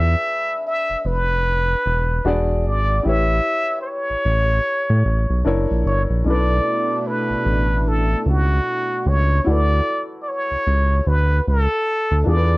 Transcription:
Already playing: analog synth bass E2, grand piano D4 F4 G#4 B4, muted trumpet E5
0.67 muted trumpet E5
0.90 analog synth bass F1
1.05 analog synth bass F1, muted trumpet B4
1.86 analog synth bass E1
2.24 analog synth bass E1, grand piano D4 F#4 G#4 D5
2.65 analog synth bass G#1, muted trumpet D5
3.03 analog synth bass A1, grand piano E4 G4 B4, muted trumpet E5
3.09 grand piano C#5
3.81 muted trumpet C5
3.87 muted trumpet C#5
4.10 analog synth bass A1
4.25 analog synth bass A1
4.90 analog synth bass A2
5.05 analog synth bass A1
5.30 analog synth bass B1
5.45 analog synth bass F#1, grand piano D4 E4 A#4 C#5
5.71 analog synth bass A#1
5.86 analog synth bass G1, muted trumpet C#5
6.10 analog synth bass A#1
6.24 analog synth bass B1, analog synth pad B2 A3 D4 E4, grand piano C#4 E4, muted trumpet D5
6.28 grand piano D4 A4 B4
7.07 muted trumpet B4
7.30 analog synth bass A1
7.46 analog synth bass A1
7.88 muted trumpet A4
8.26 analog synth bass C#2, muted trumpet F#4
9.06 analog synth bass C#2, muted trumpet C#5
9.45 analog synth bass D2, grand piano E4 F#4 A4, muted trumpet D5
9.51 grand piano B4
10.22 muted trumpet D5
10.28 muted trumpet C#5
10.51 analog synth bass C#2
10.67 analog synth bass C#2
11.07 analog synth bass D2, muted trumpet B4
11.48 analog synth bass C#2, muted trumpet A4
12.11 analog synth bass D2
12.24 analog synth bass E2, grand piano D4 F4 G#4, muted trumpet D5
12.30 grand piano A4
12.37 grand piano B4

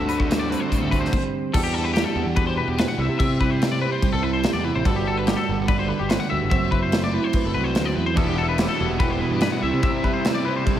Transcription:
Already playing: picked electric bass D2, overdriven electric guitar D3, clean electric guitar D3 G3 A4
0.08 overdriven electric guitar A3 C4 F#4, clean electric guitar B4, closed hi-hat
0.20 clean electric guitar C5, kick
0.28 overdriven electric guitar D3 A3 C4 F#4, clean electric guitar G3, snare, closed hi-hat
0.40 clean electric guitar D5
0.48 overdriven electric guitar A3 C4 F#4, clean electric guitar C4 B4, closed hi-hat
0.60 clean electric guitar C5
0.70 clean electric guitar A2, overdriven electric guitar D3 A3 C4 F#4, kick, closed hi-hat
0.80 picked electric bass D2, clean electric guitar A4
0.91 overdriven electric guitar A3 C4 F#4, clean electric guitar C4 B4, kick, closed hi-hat
1.01 clean electric guitar C5
1.05 snare
1.13 kick, crash
1.53 picked electric bass E2, clean electric guitar E3 G3 D4 F#4 G4 A4, kick, crash
1.63 clean electric guitar G4
1.74 clean electric guitar F#4 A4
1.84 clean electric guitar B4
1.94 clean electric guitar G3 D4 G4, snare, crash
2.04 clean electric guitar A4
2.15 picked electric bass E2, clean electric guitar F#4
2.26 picked electric bass E2
2.36 clean electric guitar G4 B4, kick, crash
2.47 clean electric guitar C5
2.57 clean electric guitar B2 B4
2.67 picked electric bass E2, clean electric guitar G4
2.78 clean electric guitar C4 B4, snare, crash
2.88 clean electric guitar D4 F#5
2.98 picked electric bass C2, clean electric guitar C3 E4 E5
3.09 picked electric bass C3
3.19 picked electric bass C3, clean electric guitar G4 E5, kick, crash
3.40 clean electric guitar G3 E4 B4, kick
3.50 clean electric guitar C5
3.62 clean electric guitar G4, snare, crash
3.72 clean electric guitar D5
3.81 clean electric guitar B4 C5
3.92 clean electric guitar C5
4.02 clean electric guitar G3, kick, crash
4.13 picked electric bass C2, clean electric guitar A4
4.22 clean electric guitar E4 B4
4.33 clean electric guitar C5
4.43 clean electric guitar G4, snare, crash
4.53 picked electric bass E2, clean electric guitar D5
4.63 clean electric guitar C3 E4 B4
4.75 picked electric bass A1, clean electric guitar C5
4.85 picked electric bass G1, clean electric guitar G2 G3 D4 F#4 A4 B4, kick, crash
4.96 clean electric guitar G4
5.05 clean electric guitar F#4 A4
5.17 clean electric guitar B4
5.26 clean electric guitar G3 D4 G4, snare, crash
5.37 clean electric guitar A4
5.48 picked electric bass G1, clean electric guitar F#4
5.59 picked electric bass G1
5.68 clean electric guitar B4 D5, kick, crash
5.79 clean electric guitar C5
5.88 clean electric guitar D3 B4
5.99 picked electric bass G1, clean electric guitar G4
6.09 clean electric guitar C4 B4, snare, crash
6.20 clean electric guitar D4 F#5
6.30 picked electric bass D2, clean electric guitar F#4 E5
6.43 picked electric bass G1
6.50 picked electric bass F#1, clean electric guitar F#3 C4 E5, kick, crash
6.71 clean electric guitar E4 B4, kick
6.83 clean electric guitar C5
6.91 clean electric guitar A3 C4, snare, crash
7.04 clean electric guitar D5
7.13 clean electric guitar E4 B4
7.24 clean electric guitar C5
7.33 clean electric guitar B4, kick, crash
7.45 picked electric bass F#1, clean electric guitar A4
7.54 picked electric bass C2, clean electric guitar F#3 B4
7.64 clean electric guitar C5
7.74 picked electric bass D2, clean electric guitar C4, snare, crash
7.85 clean electric guitar D5
7.95 picked electric bass E2, clean electric guitar E4 B4
8.06 clean electric guitar C5
8.14 picked electric bass E1, clean electric guitar E3 D4 A4, overdriven electric guitar E3 G3 B3, kick, crash
8.19 overdriven electric guitar E4
8.28 clean electric guitar G4
8.36 overdriven electric guitar G3 B3 E4, clean electric guitar F#4 A4
8.49 clean electric guitar B4
8.56 overdriven electric guitar E3 G3 B3 E4, clean electric guitar G3 C4 G4, snare, crash
8.68 clean electric guitar D4 A4
8.78 picked electric bass E1, overdriven electric guitar G3 B3 E4, clean electric guitar F#4
8.90 picked electric bass E1
8.99 overdriven electric guitar E3 G3 B3 E4, clean electric guitar G4 B4, kick, crash
9.10 clean electric guitar C5
9.18 clean electric guitar B2 B4, overdriven electric guitar G3 B3 E4
9.31 picked electric bass G2, clean electric guitar G4
9.41 overdriven electric guitar E3 G3 B3 E4, clean electric guitar D4 B4, snare, crash
9.52 clean electric guitar F#5
9.62 picked electric bass C2, clean electric guitar C3 E4 E5, overdriven electric guitar C3 G3 C4 E4
9.73 picked electric bass C3
9.82 overdriven electric guitar C3 G3 C4 E4, picked electric bass C3, clean electric guitar G4 E5, kick, crash
10.03 clean electric guitar G3 E4 B4, overdriven electric guitar G3 C4 E4, kick
10.14 clean electric guitar C5
10.24 overdriven electric guitar C3 G3 C4 E4, clean electric guitar G4, snare, crash
10.35 clean electric guitar D5
10.45 overdriven electric guitar G3 C4 E4, clean electric guitar B4 C5
10.57 clean electric guitar C5
10.65 overdriven electric guitar C3 G3 C4 E4, clean electric guitar G3, kick, crash
10.76 clean electric guitar A4

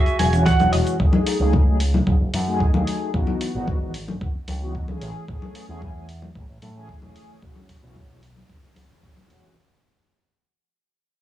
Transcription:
Already playing: clean electric guitar F#4 G#4 E5
0.06 muted picked electric bass stroke, closed hi-hat, shaker
0.19 picked electric bass E1, clean electric guitar G#5, open hi-hat, high conga
0.32 analog polysynth E3 G#3 C#4 F#4, closed hi-hat, shaker
0.46 clean electric guitar F#5, kick, snare, closed hi-hat, shaker
0.59 picked electric bass E1, analog polysynth E3 G#3 C#4 F#4, closed hi-hat, high conga, shaker
0.72 picked electric bass E1, clean electric guitar D#5, muted clean electric guitar stroke, open hi-hat
0.87 closed hi-hat, shaker
0.99 picked electric bass F#1, analog polysynth F#3 A3 D#4 G#4, kick
1.13 high conga
1.27 open hi-hat
1.40 picked electric bass C#2, analog polysynth F#3 A3 D#4 G#4
1.53 kick, high conga
1.67 analog polysynth F#3 A3 D#4 G#4
1.80 open hi-hat
1.94 high conga, low conga
2.06 picked electric bass F#1, analog polysynth F#3 A3 D#4 G#4, kick
2.21 picked electric bass F#1
2.34 picked electric bass F#2, open hi-hat, high conga
2.47 analog polysynth F#3 A3 D#4 G#4
2.60 kick
2.74 picked electric bass D#2, analog polysynth F#3 A3 D#4 G#4, high conga
2.87 open hi-hat
3.14 picked electric bass C#2, analog polysynth E3 B3 D#4 F#4, kick
3.27 high conga
3.41 open hi-hat
3.54 picked electric bass G#1, analog polysynth E3 B3 D#4 F#4
3.67 kick, high conga
3.80 analog polysynth E3 B3 D#4 F#4
3.94 open hi-hat
4.08 high conga, low conga
4.21 analog polysynth E3 B3 D#4 F#4, kick
4.35 muted picked electric bass stroke
4.48 picked electric bass C#2, open hi-hat, high conga
4.61 analog polysynth E3 B3 D#4 F#4
4.75 kick
4.88 picked electric bass C#2, analog polysynth E3 A3 C#4 G#4, high conga
5.01 picked electric bass A1, open hi-hat
5.28 picked electric bass A1, analog polysynth A3 C#4 G#4, kick
5.42 high conga
5.55 open hi-hat
5.68 picked electric bass E2, analog polysynth E3 A3 C#4 G#4
5.82 kick, high conga
5.95 analog polysynth E3 A3 C#4 G#4
6.09 open hi-hat
6.22 high conga, low conga
6.35 picked electric bass A1, analog polysynth E3 A3 C#4 G#4, kick
6.49 picked electric bass A1
6.62 picked electric bass A2, open hi-hat, high conga
6.75 analog polysynth E3 A3 C#4 G#4
6.89 kick
7.02 picked electric bass E1, analog polysynth E3 A3 C#4 G#4, high conga
7.16 open hi-hat
7.42 picked electric bass E1, analog polysynth E3 G#3 F#4, kick
7.55 high conga
7.69 kick, open hi-hat
7.82 picked electric bass B1, analog polysynth E3 G#3 C#4 F#4
7.96 kick, high conga
8.09 analog polysynth E3 G#3 C#4 F#4
8.23 open hi-hat
8.36 high conga, low conga
8.49 analog polysynth E3 G#3 C#4 F#4, kick
8.63 muted picked electric bass stroke
8.76 picked electric bass C#2, open hi-hat, high conga
8.90 analog polysynth E3 G#3 C#4 B4
9.03 kick
9.16 analog polysynth E3 C#4 F#4, high conga
9.29 picked electric bass E1, analog polysynth E3 G#3 C#4 F#4, open hi-hat

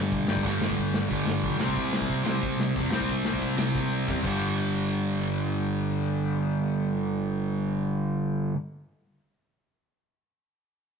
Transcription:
Already playing: distorted electric guitar G2 D3 G3
0.12 picked electric bass B1, kick, open hi-hat
0.27 picked electric bass G1, distorted electric guitar D3 G3, snare
0.31 distorted electric guitar G2
0.36 kick
0.45 picked electric bass G1, distorted electric guitar G2 D3 G3, kick, open hi-hat
0.61 picked electric bass G1, snare
0.70 kick
0.78 picked electric bass G1, kick, open hi-hat
0.92 picked electric bass G1, snare
1.08 picked electric bass G1, distorted electric guitar G2 D3 G3, kick, open hi-hat
1.26 picked electric bass G1, snare
1.43 picked electric bass B1, kick, open hi-hat
1.59 picked electric bass C2, distorted electric guitar C3 G3, snare
1.63 distorted electric guitar C4
1.69 kick
1.76 picked electric bass C2, kick, open hi-hat
1.93 picked electric bass C2, snare
2.02 kick
2.09 picked electric bass C2, kick, open hi-hat
2.24 picked electric bass C2, distorted electric guitar C3 G3 C4, snare
2.43 picked electric bass C2, kick, open hi-hat
2.58 picked electric bass C2, snare
2.75 picked electric bass E2, distorted electric guitar C3 G3, kick, open hi-hat
2.79 distorted electric guitar C4
2.91 picked electric bass C2, distorted electric guitar C3 G3, snare
2.95 distorted electric guitar C4
3.01 kick
3.09 picked electric bass C2, kick, open hi-hat
3.24 picked electric bass C2, snare
3.34 kick
3.42 picked electric bass C2, kick, open hi-hat
3.57 picked electric bass C2, distorted electric guitar C3 G3 C4, snare
3.75 picked electric bass C2, kick, snare
3.91 picked electric bass C2
4.07 picked electric bass E2, distorted electric guitar C3 G3 C4, kick, mid tom
4.24 picked electric bass G1, distorted electric guitar G2 D3, kick, crash
4.28 distorted electric guitar G3

